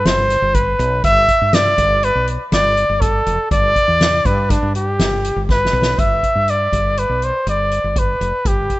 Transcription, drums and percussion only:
0.05 snare loud
0.05 closed hi-hat medium
0.30 snare soft
0.30 closed hi-hat medium
0.55 kick medium
0.55 closed hi-hat medium
0.80 closed hi-hat medium
1.04 kick loud
1.04 closed hi-hat medium
1.28 kick medium
1.28 closed hi-hat medium
1.53 snare loud
1.53 closed hi-hat medium
1.78 kick medium
1.78 closed hi-hat medium
2.03 closed hi-hat medium
2.27 closed hi-hat medium
2.52 snare medium
2.52 closed hi-hat medium
2.77 closed hi-hat medium
3.02 kick medium
3.02 snare soft
3.02 closed hi-hat medium
3.26 closed hi-hat medium
3.51 kick loud
3.51 closed hi-hat medium
3.76 kick medium
3.76 closed hi-hat soft
4.01 snare loud
4.01 closed hi-hat medium
4.25 kick medium
4.25 closed hi-hat medium
4.50 kick medium
4.50 snare soft
4.50 closed hi-hat medium
4.75 closed hi-hat medium
4.99 snare medium
4.99 closed hi-hat medium
5.24 closed hi-hat medium
5.49 kick loud
5.49 snare soft
5.65 snare medium
5.82 snare medium
5.99 kick medium
5.99 closed hi-hat medium
6.23 kick medium
6.23 closed hi-hat soft
6.48 closed hi-hat medium
6.73 kick medium
6.73 closed hi-hat medium
6.97 closed hi-hat medium
7.22 closed hi-hat soft
7.47 closed hi-hat medium
7.71 closed hi-hat medium
7.96 kick medium
7.96 closed hi-hat medium
8.21 closed hi-hat medium
8.45 kick loud
8.45 closed hi-hat medium
8.70 kick medium
8.70 closed hi-hat soft

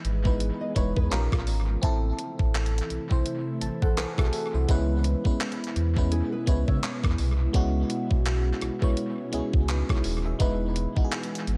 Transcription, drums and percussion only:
0.05 closed hi-hat medium
0.25 kick loud
0.40 closed hi-hat medium
0.76 kick medium
0.76 closed hi-hat medium
0.96 kick loud
1.11 clap loud
1.11 closed hi-hat medium
1.32 kick loud
1.32 cross-stick medium
1.47 open hi-hat medium
1.83 kick loud
1.83 closed hi-hat medium
2.19 closed hi-hat medium
2.39 kick loud
2.54 clap loud
2.54 closed hi-hat soft
2.66 closed hi-hat medium
2.78 closed hi-hat medium
2.90 closed hi-hat medium
3.11 kick medium
3.26 closed hi-hat medium
3.61 closed hi-hat medium
3.82 kick loud
3.97 clap loud
3.97 closed hi-hat medium
4.18 kick medium
4.18 cross-stick loud
4.33 open hi-hat medium
4.69 kick loud
4.69 closed hi-hat medium
5.04 closed hi-hat medium
5.25 kick medium
5.40 clap loud
5.40 closed hi-hat soft
5.52 closed hi-hat medium
5.64 closed hi-hat medium
5.76 closed hi-hat medium
5.96 kick medium
6.12 closed hi-hat medium
6.47 kick medium
6.47 closed hi-hat medium
6.68 kick loud
6.83 clap loud
6.83 closed hi-hat medium
7.04 kick loud
7.04 cross-stick loud
7.18 open hi-hat medium
7.54 kick loud
7.54 closed hi-hat medium
7.90 closed hi-hat medium
8.11 kick loud
8.26 clap loud
8.26 closed hi-hat medium
8.61 cross-stick medium
8.61 closed hi-hat medium
8.82 kick medium
8.97 closed hi-hat medium
9.33 closed hi-hat medium
9.53 kick loud
9.68 clap loud
9.68 closed hi-hat medium
9.89 kick loud
9.89 cross-stick loud
10.04 open hi-hat medium
10.40 kick loud
10.40 closed hi-hat medium
10.76 closed hi-hat medium
10.96 kick loud
11.11 clap loud
11.11 closed hi-hat soft
11.23 closed hi-hat medium
11.35 closed hi-hat medium
11.47 closed hi-hat medium

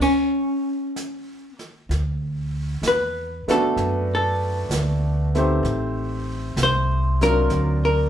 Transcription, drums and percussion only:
0.00 brush sweep soft
0.00 kick medium
0.00 crash medium
0.96 brush sweep soft
0.96 snare soft
0.96 hi-hat pedal medium
1.59 snare soft
1.91 brush sweep soft
1.91 snare soft
2.83 snare medium
2.83 hi-hat pedal medium
3.48 snare soft
3.77 brush sweep soft
3.77 snare soft
4.71 snare medium
4.71 hi-hat pedal medium
5.35 snare soft
5.65 brush sweep soft
5.65 snare soft
6.57 snare medium
6.57 hi-hat pedal medium
7.21 snare soft
7.50 brush sweep soft
7.50 snare soft

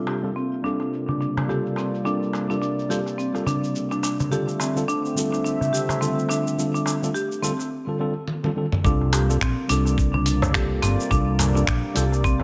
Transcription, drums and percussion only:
0.07 darbuka tek medium
0.07 shaker medium
0.25 shaker soft
0.37 shaker soft
0.53 shaker soft
0.65 shaker medium
0.80 darbuka ka soft
0.80 darbuka tek soft
0.80 shaker soft
0.93 shaker soft
1.08 darbuka dum medium
1.08 shaker soft
1.21 shaker medium
1.37 darbuka tek medium
1.37 darbuka dum medium
1.37 shaker soft
1.49 darbuka ka medium
1.49 shaker soft
1.66 shaker soft
1.76 darbuka tek medium
1.76 shaker medium
1.94 shaker soft
2.06 shaker soft
2.23 shaker soft
2.33 darbuka tek medium
2.33 shaker medium
2.51 shaker soft
2.63 shaker soft
2.79 shaker soft
2.91 shaker medium
3.06 darbuka ka soft
3.06 darbuka tek soft
3.06 shaker soft
3.19 shaker soft
3.35 darbuka ka medium
3.35 shaker soft
3.46 darbuka dum medium
3.46 shaker medium
3.64 shaker soft
3.75 shaker soft
3.91 darbuka ka soft
3.91 shaker soft
4.03 darbuka tek medium
4.03 shaker medium
4.20 darbuka dum medium
4.20 shaker soft
4.32 shaker soft
4.47 darbuka ka soft
4.47 shaker soft
4.60 darbuka tek medium
4.60 shaker medium
4.77 shaker soft
4.89 shaker soft
5.05 shaker soft
5.17 shaker medium
5.32 darbuka ka soft
5.32 darbuka tek soft
5.32 shaker soft
5.46 shaker soft
5.61 darbuka dum medium
5.61 shaker soft
5.74 shaker medium
5.89 darbuka tek medium
5.89 darbuka dum medium
5.89 shaker soft
6.01 darbuka ka medium
6.01 shaker soft
6.19 shaker soft
6.29 darbuka tek medium
6.29 shaker medium
6.47 shaker soft
6.59 shaker soft
6.75 shaker soft
6.86 darbuka tek medium
6.86 shaker medium
7.03 shaker soft
7.15 shaker soft
7.32 shaker soft
7.43 shaker medium
7.59 darbuka ka soft
7.59 darbuka tek soft
7.59 shaker soft
8.28 high tom medium
8.44 high tom medium
8.72 mid tom medium
8.85 kick loud
8.85 shaker soft
9.01 darbuka ka soft
9.13 closed hi-hat medium
9.13 darbuka tek medium
9.13 shaker medium
9.30 shaker soft
9.41 finger snap medium
9.41 kick loud
9.41 shaker soft
9.69 closed hi-hat medium
9.69 shaker medium
9.85 darbuka ka soft
9.85 darbuka tek soft
9.85 shaker soft
9.98 kick loud
9.98 shaker soft
10.14 darbuka dum medium
10.26 closed hi-hat medium
10.26 shaker medium
10.42 mid tom medium
10.42 darbuka tek medium
10.42 darbuka dum medium
10.42 shaker soft
10.54 finger snap loud
10.54 kick loud
10.54 darbuka ka medium
10.54 shaker soft
10.83 closed hi-hat medium
10.83 darbuka tek medium
10.83 shaker medium
11.00 shaker soft
11.11 kick loud
11.11 shaker soft
11.39 closed hi-hat medium
11.39 mid tom medium
11.39 darbuka tek medium
11.39 shaker medium
11.56 shaker soft
11.67 finger snap loud
11.67 kick loud
11.67 shaker soft
11.96 closed hi-hat medium
11.96 shaker medium
12.12 darbuka tek soft
12.12 shaker soft
12.24 kick loud
12.24 shaker soft
12.40 darbuka ka medium

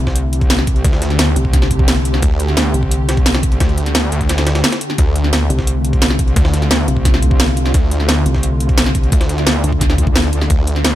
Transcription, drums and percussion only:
0.07 kick medium
0.07 snare medium
0.16 closed hi-hat medium
0.33 closed hi-hat medium
0.41 kick loud
0.41 closed hi-hat soft
0.50 snare loud
0.50 closed hi-hat medium
0.59 snare soft
0.59 snare medium
0.67 kick loud
0.67 closed hi-hat medium
0.76 closed hi-hat soft
0.84 kick loud
0.84 closed hi-hat medium
0.93 snare medium
1.02 snare soft
1.02 closed hi-hat medium
1.10 snare soft
1.10 closed hi-hat soft
1.19 snare loud
1.19 closed hi-hat medium
1.36 closed hi-hat medium
1.45 kick medium
1.53 kick loud
1.53 snare soft
1.53 closed hi-hat medium
1.62 snare medium
1.62 snare soft
1.71 kick medium
1.71 closed hi-hat medium
1.79 kick loud
1.88 snare loud
1.88 closed hi-hat medium
1.97 closed hi-hat soft
2.05 closed hi-hat medium
2.14 snare soft
2.22 kick loud
2.22 closed hi-hat loud
2.22 closed hi-hat medium
2.40 closed hi-hat medium
2.48 snare soft
2.57 snare loud
2.57 closed hi-hat medium
2.57 closed hi-hat loud
2.74 closed hi-hat medium
2.83 kick medium
2.91 closed hi-hat medium
3.09 snare loud
3.09 closed hi-hat medium
3.17 kick loud
3.17 closed hi-hat soft
3.26 snare loud
3.26 closed hi-hat loud
3.26 closed hi-hat medium
3.35 snare loud
3.35 snare medium
3.35 closed hi-hat medium
3.43 kick loud
3.43 closed hi-hat medium
3.43 closed hi-hat soft
3.52 closed hi-hat medium
3.60 kick loud
3.60 snare loud
3.60 closed hi-hat loud
3.60 closed hi-hat medium
3.69 closed hi-hat soft
3.78 closed hi-hat medium
3.86 snare soft
3.86 closed hi-hat soft
3.95 snare loud
3.95 closed hi-hat medium
3.95 closed hi-hat loud
4.12 closed hi-hat medium
4.21 kick medium
4.21 closed hi-hat soft
4.29 snare loud
4.29 snare soft
4.29 closed hi-hat medium
4.29 closed hi-hat loud
4.38 snare loud
4.38 snare soft
4.38 closed hi-hat medium
4.47 snare loud
4.47 closed hi-hat medium
4.55 snare loud
4.55 closed hi-hat medium
4.64 snare loud
4.64 closed hi-hat loud
4.64 closed hi-hat medium
4.72 snare loud
4.72 closed hi-hat medium
4.72 closed hi-hat soft
4.81 closed hi-hat medium
4.90 snare soft
4.98 kick loud
4.98 closed hi-hat medium
4.98 closed hi-hat loud
5.16 closed hi-hat medium
5.24 snare soft
5.33 snare loud
5.33 closed hi-hat medium
5.33 closed hi-hat loud
5.50 closed hi-hat medium
5.59 kick medium
5.59 snare medium
5.67 closed hi-hat medium
5.85 closed hi-hat medium
5.93 kick loud
5.93 closed hi-hat soft
6.02 snare loud
6.02 closed hi-hat medium
6.02 closed hi-hat loud
6.10 snare soft
6.10 snare medium
6.19 kick loud
6.19 closed hi-hat medium
6.28 closed hi-hat soft
6.36 kick loud
6.36 closed hi-hat loud
6.36 closed hi-hat medium
6.45 snare medium
6.53 snare soft
6.53 closed hi-hat medium
6.62 snare soft
6.62 closed hi-hat soft
6.71 snare loud
6.71 closed hi-hat medium
6.71 closed hi-hat loud
6.88 closed hi-hat medium
6.97 kick medium
7.05 kick loud
7.05 snare medium
7.05 closed hi-hat medium
7.14 snare medium
7.22 kick medium
7.22 closed hi-hat medium
7.31 kick loud
7.40 snare loud
7.40 closed hi-hat medium
7.40 closed hi-hat loud
7.48 closed hi-hat soft
7.57 closed hi-hat medium
7.66 snare soft
7.74 kick loud
7.74 closed hi-hat medium
7.91 closed hi-hat medium
8.00 snare soft
8.09 snare loud
8.09 closed hi-hat medium
8.26 closed hi-hat medium
8.35 kick medium
8.35 snare medium
8.43 closed hi-hat medium
8.60 closed hi-hat medium
8.69 kick loud
8.69 closed hi-hat soft
8.78 snare loud
8.78 closed hi-hat medium
8.86 snare soft
8.86 snare medium
8.95 kick loud
8.95 closed hi-hat medium
9.03 closed hi-hat soft
9.12 kick loud
9.12 closed hi-hat medium
9.21 snare medium
9.21 closed hi-hat soft
9.29 snare soft
9.29 closed hi-hat medium
9.38 snare soft
9.38 closed hi-hat soft
9.47 snare loud
9.47 closed hi-hat medium
9.64 closed hi-hat medium
9.72 kick medium
9.81 kick loud
9.81 snare soft
9.81 closed hi-hat medium
9.90 snare medium
9.90 snare soft
9.98 kick medium
9.98 closed hi-hat medium
10.07 kick loud
10.16 snare loud
10.16 closed hi-hat medium
10.24 closed hi-hat soft
10.33 closed hi-hat medium
10.41 snare soft
10.50 kick loud
10.50 closed hi-hat medium
10.67 closed hi-hat medium
10.76 snare soft
10.85 snare loud
10.85 closed hi-hat medium

